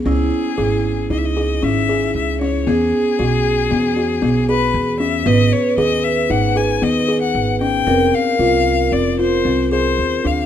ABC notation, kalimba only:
X:1
M:5/4
L:1/8
Q:1/4=115
K:C#m
V:1 name="Kalimba"
C2 G2 D G C G2 C | B,2 F2 B, F B, G2 C | B,2 G2 D G B, G2 C | =C2 =F2 C F C _A2 =D |]